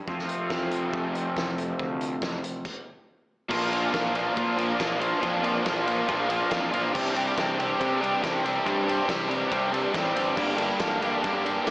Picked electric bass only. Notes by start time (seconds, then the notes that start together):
0.07 F2
0.50 F2
0.93 F2
1.36 F2
1.80 D2
2.22 F2
3.51 A#1
3.94 A#1
4.37 A#2
4.80 A#1
5.23 F2
5.66 A#1
6.09 A#1
6.52 F2
6.74 A#1
6.95 C2
7.38 C2
7.81 C3
8.23 C2
8.66 G2
9.09 C2
9.52 C2
9.94 A1
10.16 G1
10.37 G1
10.80 G1
11.24 G2
11.67 G1